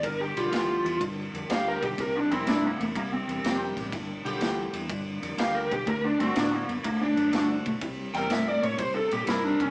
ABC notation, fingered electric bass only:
X:1
M:4/4
L:1/8
Q:"Swing" 1/4=123
K:C
V:1 name="Fingered electric bass" clef=bass
G,,, B,,, D,, E,, G,, F,, D,, B,,, | C,, F,, G,, E,, C,, E,, F,, A,,, | G,,, B,,, D,, E,, G,, F,, D,, B,,, | D,, G,, A,, ^F,, D,, F,, G,, B,,, |
C,, E,, G,, A,, C, _B,, G,, F,,, |]